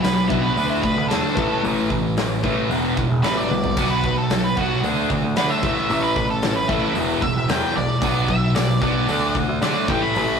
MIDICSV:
0, 0, Header, 1, 7, 480
1, 0, Start_track
1, 0, Tempo, 532860
1, 1473, Time_signature, 4, 2, 24, 8
1, 9367, End_track
2, 0, Start_track
2, 0, Title_t, "Lead electric guitar"
2, 0, Program_c, 0, 29
2, 6, Note_on_c, 0, 71, 83
2, 121, Note_off_c, 0, 71, 0
2, 131, Note_on_c, 0, 71, 91
2, 257, Note_off_c, 0, 71, 0
2, 257, Note_on_c, 0, 64, 79
2, 374, Note_on_c, 0, 71, 82
2, 380, Note_off_c, 0, 64, 0
2, 476, Note_off_c, 0, 71, 0
2, 486, Note_on_c, 0, 71, 89
2, 615, Note_off_c, 0, 71, 0
2, 630, Note_on_c, 0, 64, 85
2, 737, Note_on_c, 0, 71, 86
2, 747, Note_off_c, 0, 64, 0
2, 973, Note_off_c, 0, 71, 0
2, 976, Note_on_c, 0, 69, 88
2, 1450, Note_off_c, 0, 69, 0
2, 2910, Note_on_c, 0, 71, 101
2, 3029, Note_off_c, 0, 71, 0
2, 3040, Note_on_c, 0, 74, 100
2, 3504, Note_off_c, 0, 74, 0
2, 3516, Note_on_c, 0, 71, 86
2, 3749, Note_off_c, 0, 71, 0
2, 3766, Note_on_c, 0, 69, 89
2, 3994, Note_off_c, 0, 69, 0
2, 3999, Note_on_c, 0, 71, 87
2, 4114, Note_off_c, 0, 71, 0
2, 4121, Note_on_c, 0, 66, 94
2, 4351, Note_off_c, 0, 66, 0
2, 4840, Note_on_c, 0, 71, 104
2, 4953, Note_on_c, 0, 76, 97
2, 4955, Note_off_c, 0, 71, 0
2, 5420, Note_off_c, 0, 76, 0
2, 5430, Note_on_c, 0, 71, 90
2, 5666, Note_off_c, 0, 71, 0
2, 5678, Note_on_c, 0, 69, 88
2, 5905, Note_off_c, 0, 69, 0
2, 5909, Note_on_c, 0, 71, 87
2, 6020, Note_on_c, 0, 64, 101
2, 6028, Note_off_c, 0, 71, 0
2, 6260, Note_off_c, 0, 64, 0
2, 6508, Note_on_c, 0, 76, 96
2, 6744, Note_off_c, 0, 76, 0
2, 6756, Note_on_c, 0, 79, 88
2, 6988, Note_off_c, 0, 79, 0
2, 6988, Note_on_c, 0, 74, 97
2, 7456, Note_off_c, 0, 74, 0
2, 7468, Note_on_c, 0, 76, 108
2, 7703, Note_off_c, 0, 76, 0
2, 7706, Note_on_c, 0, 74, 98
2, 7938, Note_off_c, 0, 74, 0
2, 7949, Note_on_c, 0, 74, 93
2, 8415, Note_off_c, 0, 74, 0
2, 8669, Note_on_c, 0, 74, 94
2, 8902, Note_off_c, 0, 74, 0
2, 8913, Note_on_c, 0, 79, 93
2, 9025, Note_on_c, 0, 83, 85
2, 9028, Note_off_c, 0, 79, 0
2, 9367, Note_off_c, 0, 83, 0
2, 9367, End_track
3, 0, Start_track
3, 0, Title_t, "Clean electric guitar"
3, 0, Program_c, 1, 27
3, 254, Note_on_c, 1, 66, 89
3, 259, Note_on_c, 1, 62, 80
3, 262, Note_on_c, 1, 59, 81
3, 269, Note_on_c, 1, 54, 66
3, 485, Note_off_c, 1, 54, 0
3, 490, Note_off_c, 1, 66, 0
3, 493, Note_off_c, 1, 62, 0
3, 497, Note_off_c, 1, 59, 0
3, 1214, Note_on_c, 1, 71, 89
3, 1221, Note_on_c, 1, 64, 80
3, 1226, Note_on_c, 1, 61, 84
3, 1227, Note_on_c, 1, 57, 66
3, 1452, Note_off_c, 1, 57, 0
3, 1458, Note_off_c, 1, 61, 0
3, 1461, Note_off_c, 1, 64, 0
3, 1463, Note_on_c, 1, 57, 91
3, 1464, Note_off_c, 1, 71, 0
3, 1469, Note_on_c, 1, 61, 87
3, 1472, Note_on_c, 1, 64, 90
3, 1473, Note_on_c, 1, 71, 96
3, 1706, Note_off_c, 1, 71, 0
3, 1708, Note_off_c, 1, 57, 0
3, 1709, Note_off_c, 1, 64, 0
3, 1711, Note_off_c, 1, 61, 0
3, 2196, Note_on_c, 1, 71, 89
3, 2197, Note_on_c, 1, 64, 84
3, 2198, Note_on_c, 1, 61, 70
3, 2204, Note_on_c, 1, 57, 67
3, 2436, Note_off_c, 1, 61, 0
3, 2436, Note_off_c, 1, 64, 0
3, 2436, Note_off_c, 1, 71, 0
3, 2440, Note_off_c, 1, 57, 0
3, 3154, Note_on_c, 1, 71, 87
3, 3161, Note_on_c, 1, 64, 81
3, 3163, Note_on_c, 1, 59, 75
3, 3169, Note_on_c, 1, 55, 68
3, 3395, Note_off_c, 1, 71, 0
3, 3398, Note_off_c, 1, 64, 0
3, 3399, Note_off_c, 1, 59, 0
3, 3402, Note_off_c, 1, 55, 0
3, 9367, End_track
4, 0, Start_track
4, 0, Title_t, "Overdriven electric guitar"
4, 0, Program_c, 2, 29
4, 27, Note_on_c, 2, 47, 69
4, 29, Note_on_c, 2, 54, 80
4, 245, Note_off_c, 2, 47, 0
4, 246, Note_off_c, 2, 54, 0
4, 263, Note_on_c, 2, 47, 84
4, 265, Note_on_c, 2, 54, 96
4, 274, Note_on_c, 2, 59, 94
4, 493, Note_off_c, 2, 47, 0
4, 494, Note_off_c, 2, 54, 0
4, 498, Note_off_c, 2, 59, 0
4, 505, Note_on_c, 2, 50, 87
4, 515, Note_on_c, 2, 57, 90
4, 521, Note_on_c, 2, 62, 89
4, 729, Note_off_c, 2, 50, 0
4, 733, Note_off_c, 2, 57, 0
4, 740, Note_on_c, 2, 50, 68
4, 742, Note_off_c, 2, 62, 0
4, 744, Note_on_c, 2, 57, 83
4, 962, Note_off_c, 2, 50, 0
4, 964, Note_off_c, 2, 57, 0
4, 987, Note_on_c, 2, 50, 77
4, 990, Note_on_c, 2, 57, 89
4, 996, Note_on_c, 2, 62, 92
4, 1216, Note_off_c, 2, 50, 0
4, 1217, Note_off_c, 2, 57, 0
4, 1220, Note_off_c, 2, 62, 0
4, 1222, Note_on_c, 2, 45, 83
4, 1230, Note_on_c, 2, 52, 89
4, 1232, Note_on_c, 2, 57, 99
4, 1453, Note_off_c, 2, 45, 0
4, 1457, Note_off_c, 2, 52, 0
4, 1458, Note_off_c, 2, 57, 0
4, 1466, Note_on_c, 2, 45, 77
4, 1477, Note_on_c, 2, 52, 90
4, 1480, Note_on_c, 2, 57, 96
4, 1696, Note_off_c, 2, 45, 0
4, 1701, Note_off_c, 2, 52, 0
4, 1702, Note_off_c, 2, 57, 0
4, 1712, Note_on_c, 2, 45, 60
4, 1717, Note_on_c, 2, 52, 65
4, 1929, Note_off_c, 2, 45, 0
4, 1932, Note_off_c, 2, 52, 0
4, 1953, Note_on_c, 2, 45, 78
4, 1953, Note_on_c, 2, 52, 80
4, 2170, Note_off_c, 2, 45, 0
4, 2170, Note_off_c, 2, 52, 0
4, 2183, Note_on_c, 2, 45, 83
4, 2184, Note_on_c, 2, 52, 91
4, 2190, Note_on_c, 2, 57, 92
4, 2414, Note_off_c, 2, 45, 0
4, 2415, Note_off_c, 2, 52, 0
4, 2418, Note_off_c, 2, 57, 0
4, 2422, Note_on_c, 2, 40, 77
4, 2429, Note_on_c, 2, 47, 89
4, 2440, Note_on_c, 2, 52, 92
4, 2654, Note_off_c, 2, 40, 0
4, 2657, Note_off_c, 2, 47, 0
4, 2663, Note_off_c, 2, 52, 0
4, 2667, Note_on_c, 2, 47, 74
4, 2668, Note_on_c, 2, 40, 75
4, 2887, Note_off_c, 2, 47, 0
4, 2888, Note_off_c, 2, 40, 0
4, 2902, Note_on_c, 2, 40, 83
4, 2911, Note_on_c, 2, 47, 91
4, 2914, Note_on_c, 2, 52, 92
4, 3134, Note_off_c, 2, 40, 0
4, 3139, Note_off_c, 2, 47, 0
4, 3141, Note_off_c, 2, 52, 0
4, 3152, Note_on_c, 2, 40, 68
4, 3153, Note_on_c, 2, 47, 76
4, 3370, Note_off_c, 2, 40, 0
4, 3370, Note_off_c, 2, 47, 0
4, 3391, Note_on_c, 2, 47, 80
4, 3395, Note_on_c, 2, 54, 82
4, 3399, Note_on_c, 2, 59, 93
4, 3619, Note_off_c, 2, 47, 0
4, 3621, Note_off_c, 2, 54, 0
4, 3623, Note_off_c, 2, 59, 0
4, 3638, Note_on_c, 2, 47, 63
4, 3638, Note_on_c, 2, 54, 71
4, 3853, Note_off_c, 2, 47, 0
4, 3853, Note_off_c, 2, 54, 0
4, 3876, Note_on_c, 2, 47, 74
4, 3883, Note_on_c, 2, 54, 80
4, 4092, Note_off_c, 2, 47, 0
4, 4095, Note_off_c, 2, 54, 0
4, 4114, Note_on_c, 2, 47, 84
4, 4125, Note_on_c, 2, 54, 95
4, 4127, Note_on_c, 2, 59, 104
4, 4341, Note_off_c, 2, 47, 0
4, 4346, Note_off_c, 2, 54, 0
4, 4347, Note_off_c, 2, 59, 0
4, 4352, Note_on_c, 2, 50, 85
4, 4363, Note_on_c, 2, 57, 90
4, 4365, Note_on_c, 2, 62, 86
4, 4580, Note_off_c, 2, 50, 0
4, 4585, Note_off_c, 2, 57, 0
4, 4586, Note_off_c, 2, 62, 0
4, 4590, Note_on_c, 2, 50, 80
4, 4597, Note_on_c, 2, 57, 80
4, 4809, Note_off_c, 2, 50, 0
4, 4812, Note_off_c, 2, 57, 0
4, 4827, Note_on_c, 2, 50, 81
4, 4833, Note_on_c, 2, 57, 89
4, 4841, Note_on_c, 2, 62, 92
4, 5057, Note_off_c, 2, 50, 0
4, 5060, Note_off_c, 2, 57, 0
4, 5064, Note_off_c, 2, 62, 0
4, 5071, Note_on_c, 2, 45, 92
4, 5078, Note_on_c, 2, 52, 94
4, 5080, Note_on_c, 2, 57, 98
4, 5299, Note_off_c, 2, 45, 0
4, 5302, Note_off_c, 2, 52, 0
4, 5304, Note_off_c, 2, 57, 0
4, 5312, Note_on_c, 2, 45, 86
4, 5317, Note_on_c, 2, 52, 94
4, 5319, Note_on_c, 2, 57, 91
4, 5535, Note_off_c, 2, 45, 0
4, 5537, Note_off_c, 2, 52, 0
4, 5543, Note_off_c, 2, 57, 0
4, 5546, Note_on_c, 2, 45, 66
4, 5548, Note_on_c, 2, 52, 77
4, 5767, Note_off_c, 2, 45, 0
4, 5768, Note_off_c, 2, 52, 0
4, 5787, Note_on_c, 2, 45, 70
4, 5787, Note_on_c, 2, 52, 85
4, 6007, Note_off_c, 2, 45, 0
4, 6007, Note_off_c, 2, 52, 0
4, 6017, Note_on_c, 2, 45, 88
4, 6023, Note_on_c, 2, 52, 100
4, 6032, Note_on_c, 2, 57, 103
4, 6250, Note_on_c, 2, 40, 84
4, 6251, Note_off_c, 2, 52, 0
4, 6252, Note_off_c, 2, 45, 0
4, 6258, Note_on_c, 2, 47, 99
4, 6259, Note_off_c, 2, 57, 0
4, 6262, Note_on_c, 2, 52, 99
4, 6488, Note_off_c, 2, 40, 0
4, 6492, Note_off_c, 2, 47, 0
4, 6494, Note_off_c, 2, 52, 0
4, 6498, Note_on_c, 2, 40, 80
4, 6504, Note_on_c, 2, 47, 84
4, 6722, Note_off_c, 2, 40, 0
4, 6725, Note_off_c, 2, 47, 0
4, 6731, Note_on_c, 2, 40, 82
4, 6739, Note_on_c, 2, 47, 90
4, 6747, Note_on_c, 2, 52, 90
4, 6968, Note_off_c, 2, 40, 0
4, 6970, Note_off_c, 2, 47, 0
4, 6976, Note_off_c, 2, 52, 0
4, 6978, Note_on_c, 2, 40, 69
4, 6981, Note_on_c, 2, 47, 78
4, 7196, Note_off_c, 2, 47, 0
4, 7202, Note_off_c, 2, 40, 0
4, 7207, Note_on_c, 2, 47, 80
4, 7216, Note_on_c, 2, 54, 92
4, 7222, Note_on_c, 2, 59, 94
4, 7446, Note_off_c, 2, 47, 0
4, 7450, Note_off_c, 2, 54, 0
4, 7453, Note_off_c, 2, 59, 0
4, 7461, Note_on_c, 2, 47, 72
4, 7465, Note_on_c, 2, 54, 71
4, 7683, Note_off_c, 2, 47, 0
4, 7685, Note_off_c, 2, 54, 0
4, 7700, Note_on_c, 2, 47, 79
4, 7704, Note_on_c, 2, 54, 85
4, 7922, Note_off_c, 2, 47, 0
4, 7924, Note_off_c, 2, 54, 0
4, 7935, Note_on_c, 2, 47, 92
4, 7943, Note_on_c, 2, 54, 93
4, 7950, Note_on_c, 2, 59, 95
4, 8169, Note_off_c, 2, 47, 0
4, 8173, Note_off_c, 2, 54, 0
4, 8176, Note_off_c, 2, 59, 0
4, 8183, Note_on_c, 2, 50, 89
4, 8187, Note_on_c, 2, 62, 107
4, 8188, Note_on_c, 2, 57, 94
4, 8412, Note_off_c, 2, 50, 0
4, 8414, Note_off_c, 2, 62, 0
4, 8415, Note_off_c, 2, 57, 0
4, 8431, Note_on_c, 2, 50, 72
4, 8433, Note_on_c, 2, 57, 86
4, 8647, Note_off_c, 2, 50, 0
4, 8647, Note_off_c, 2, 57, 0
4, 8662, Note_on_c, 2, 50, 93
4, 8667, Note_on_c, 2, 57, 94
4, 8672, Note_on_c, 2, 62, 94
4, 8891, Note_off_c, 2, 50, 0
4, 8894, Note_off_c, 2, 57, 0
4, 8896, Note_off_c, 2, 62, 0
4, 8904, Note_on_c, 2, 45, 92
4, 8912, Note_on_c, 2, 52, 94
4, 8915, Note_on_c, 2, 57, 94
4, 9126, Note_off_c, 2, 45, 0
4, 9136, Note_off_c, 2, 52, 0
4, 9137, Note_off_c, 2, 57, 0
4, 9137, Note_on_c, 2, 45, 92
4, 9148, Note_on_c, 2, 52, 86
4, 9155, Note_on_c, 2, 57, 90
4, 9367, Note_off_c, 2, 45, 0
4, 9367, Note_off_c, 2, 52, 0
4, 9367, Note_off_c, 2, 57, 0
4, 9367, End_track
5, 0, Start_track
5, 0, Title_t, "Picked electric bass"
5, 0, Program_c, 3, 34
5, 0, Note_on_c, 3, 35, 101
5, 474, Note_off_c, 3, 35, 0
5, 508, Note_on_c, 3, 38, 83
5, 846, Note_off_c, 3, 38, 0
5, 877, Note_on_c, 3, 38, 97
5, 987, Note_off_c, 3, 38, 0
5, 991, Note_on_c, 3, 40, 81
5, 1103, Note_off_c, 3, 40, 0
5, 1235, Note_on_c, 3, 33, 84
5, 1346, Note_off_c, 3, 33, 0
5, 1481, Note_on_c, 3, 33, 101
5, 2402, Note_off_c, 3, 33, 0
5, 2428, Note_on_c, 3, 28, 86
5, 2767, Note_off_c, 3, 28, 0
5, 2794, Note_on_c, 3, 28, 90
5, 2906, Note_off_c, 3, 28, 0
5, 2910, Note_on_c, 3, 33, 75
5, 3129, Note_off_c, 3, 33, 0
5, 3162, Note_on_c, 3, 35, 80
5, 3375, Note_off_c, 3, 35, 0
5, 3397, Note_on_c, 3, 35, 97
5, 4321, Note_off_c, 3, 35, 0
5, 4362, Note_on_c, 3, 38, 84
5, 4695, Note_off_c, 3, 38, 0
5, 4721, Note_on_c, 3, 38, 91
5, 4831, Note_off_c, 3, 38, 0
5, 4842, Note_on_c, 3, 50, 85
5, 4951, Note_off_c, 3, 50, 0
5, 5073, Note_on_c, 3, 33, 88
5, 5187, Note_off_c, 3, 33, 0
5, 5314, Note_on_c, 3, 33, 108
5, 6238, Note_off_c, 3, 33, 0
5, 6276, Note_on_c, 3, 28, 90
5, 6611, Note_off_c, 3, 28, 0
5, 6626, Note_on_c, 3, 28, 91
5, 6742, Note_off_c, 3, 28, 0
5, 6749, Note_on_c, 3, 40, 84
5, 6863, Note_off_c, 3, 40, 0
5, 6994, Note_on_c, 3, 35, 87
5, 7106, Note_off_c, 3, 35, 0
5, 7224, Note_on_c, 3, 35, 104
5, 8151, Note_off_c, 3, 35, 0
5, 8188, Note_on_c, 3, 38, 88
5, 8525, Note_off_c, 3, 38, 0
5, 8544, Note_on_c, 3, 38, 98
5, 8656, Note_off_c, 3, 38, 0
5, 8661, Note_on_c, 3, 50, 88
5, 8777, Note_off_c, 3, 50, 0
5, 8905, Note_on_c, 3, 33, 96
5, 9019, Note_off_c, 3, 33, 0
5, 9155, Note_on_c, 3, 33, 104
5, 9367, Note_off_c, 3, 33, 0
5, 9367, End_track
6, 0, Start_track
6, 0, Title_t, "Muted clean electric guitar strokes"
6, 27, Note_on_c, 9, 29, 43
6, 118, Note_off_c, 9, 29, 0
6, 496, Note_on_c, 9, 29, 47
6, 586, Note_off_c, 9, 29, 0
6, 738, Note_on_c, 9, 29, 54
6, 828, Note_off_c, 9, 29, 0
6, 979, Note_on_c, 9, 29, 50
6, 1069, Note_off_c, 9, 29, 0
6, 1716, Note_on_c, 9, 29, 51
6, 1806, Note_off_c, 9, 29, 0
6, 1952, Note_on_c, 9, 29, 46
6, 2042, Note_off_c, 9, 29, 0
6, 2444, Note_on_c, 9, 29, 43
6, 2534, Note_off_c, 9, 29, 0
6, 2682, Note_on_c, 9, 29, 49
6, 2772, Note_off_c, 9, 29, 0
6, 2917, Note_on_c, 9, 29, 46
6, 3007, Note_off_c, 9, 29, 0
6, 9367, End_track
7, 0, Start_track
7, 0, Title_t, "Drums"
7, 35, Note_on_c, 9, 46, 58
7, 42, Note_on_c, 9, 38, 112
7, 125, Note_off_c, 9, 46, 0
7, 133, Note_off_c, 9, 38, 0
7, 272, Note_on_c, 9, 36, 87
7, 362, Note_off_c, 9, 36, 0
7, 515, Note_on_c, 9, 46, 53
7, 605, Note_off_c, 9, 46, 0
7, 752, Note_on_c, 9, 36, 83
7, 842, Note_off_c, 9, 36, 0
7, 994, Note_on_c, 9, 46, 52
7, 1001, Note_on_c, 9, 38, 110
7, 1084, Note_off_c, 9, 46, 0
7, 1091, Note_off_c, 9, 38, 0
7, 1233, Note_on_c, 9, 36, 101
7, 1323, Note_off_c, 9, 36, 0
7, 1482, Note_on_c, 9, 46, 50
7, 1572, Note_off_c, 9, 46, 0
7, 1714, Note_on_c, 9, 36, 79
7, 1804, Note_off_c, 9, 36, 0
7, 1954, Note_on_c, 9, 46, 53
7, 1962, Note_on_c, 9, 38, 106
7, 2044, Note_off_c, 9, 46, 0
7, 2052, Note_off_c, 9, 38, 0
7, 2195, Note_on_c, 9, 36, 83
7, 2285, Note_off_c, 9, 36, 0
7, 2439, Note_on_c, 9, 46, 55
7, 2529, Note_off_c, 9, 46, 0
7, 2678, Note_on_c, 9, 36, 89
7, 2768, Note_off_c, 9, 36, 0
7, 2915, Note_on_c, 9, 46, 57
7, 2922, Note_on_c, 9, 38, 106
7, 3005, Note_off_c, 9, 46, 0
7, 3013, Note_off_c, 9, 38, 0
7, 3159, Note_on_c, 9, 48, 60
7, 3249, Note_off_c, 9, 48, 0
7, 3276, Note_on_c, 9, 43, 96
7, 3366, Note_off_c, 9, 43, 0
7, 3394, Note_on_c, 9, 46, 53
7, 3394, Note_on_c, 9, 49, 83
7, 3397, Note_on_c, 9, 36, 103
7, 3484, Note_off_c, 9, 46, 0
7, 3484, Note_off_c, 9, 49, 0
7, 3487, Note_off_c, 9, 36, 0
7, 3637, Note_on_c, 9, 36, 89
7, 3727, Note_off_c, 9, 36, 0
7, 3875, Note_on_c, 9, 46, 59
7, 3882, Note_on_c, 9, 38, 117
7, 3965, Note_off_c, 9, 46, 0
7, 3972, Note_off_c, 9, 38, 0
7, 4118, Note_on_c, 9, 36, 86
7, 4208, Note_off_c, 9, 36, 0
7, 4356, Note_on_c, 9, 46, 61
7, 4446, Note_off_c, 9, 46, 0
7, 4595, Note_on_c, 9, 36, 83
7, 4685, Note_off_c, 9, 36, 0
7, 4828, Note_on_c, 9, 46, 55
7, 4835, Note_on_c, 9, 38, 103
7, 4918, Note_off_c, 9, 46, 0
7, 4925, Note_off_c, 9, 38, 0
7, 5071, Note_on_c, 9, 36, 104
7, 5161, Note_off_c, 9, 36, 0
7, 5314, Note_on_c, 9, 46, 51
7, 5404, Note_off_c, 9, 46, 0
7, 5550, Note_on_c, 9, 36, 86
7, 5553, Note_on_c, 9, 38, 32
7, 5640, Note_off_c, 9, 36, 0
7, 5643, Note_off_c, 9, 38, 0
7, 5785, Note_on_c, 9, 46, 57
7, 5792, Note_on_c, 9, 38, 109
7, 5875, Note_off_c, 9, 46, 0
7, 5882, Note_off_c, 9, 38, 0
7, 6026, Note_on_c, 9, 36, 91
7, 6116, Note_off_c, 9, 36, 0
7, 6262, Note_on_c, 9, 46, 53
7, 6352, Note_off_c, 9, 46, 0
7, 6506, Note_on_c, 9, 36, 94
7, 6596, Note_off_c, 9, 36, 0
7, 6746, Note_on_c, 9, 46, 55
7, 6754, Note_on_c, 9, 38, 104
7, 6837, Note_off_c, 9, 46, 0
7, 6844, Note_off_c, 9, 38, 0
7, 7222, Note_on_c, 9, 36, 101
7, 7222, Note_on_c, 9, 46, 53
7, 7312, Note_off_c, 9, 36, 0
7, 7312, Note_off_c, 9, 46, 0
7, 7462, Note_on_c, 9, 36, 84
7, 7552, Note_off_c, 9, 36, 0
7, 7704, Note_on_c, 9, 46, 62
7, 7711, Note_on_c, 9, 38, 114
7, 7794, Note_off_c, 9, 46, 0
7, 7801, Note_off_c, 9, 38, 0
7, 7942, Note_on_c, 9, 36, 93
7, 8032, Note_off_c, 9, 36, 0
7, 8183, Note_on_c, 9, 46, 64
7, 8273, Note_off_c, 9, 46, 0
7, 8423, Note_on_c, 9, 36, 86
7, 8513, Note_off_c, 9, 36, 0
7, 8664, Note_on_c, 9, 46, 55
7, 8671, Note_on_c, 9, 38, 104
7, 8754, Note_off_c, 9, 46, 0
7, 8761, Note_off_c, 9, 38, 0
7, 8903, Note_on_c, 9, 36, 103
7, 8993, Note_off_c, 9, 36, 0
7, 9144, Note_on_c, 9, 46, 57
7, 9234, Note_off_c, 9, 46, 0
7, 9367, End_track
0, 0, End_of_file